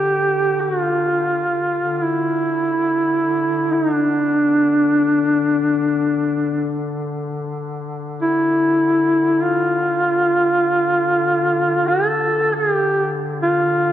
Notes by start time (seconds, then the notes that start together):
Already playing: D3 G4
0.61 F#4
0.81 F4
1.77 D3
2.02 E4
3.73 D#4
3.92 D4
8.21 E4
9.43 F4
11.88 A4
12.54 G#4
12.73 G4
13.42 F4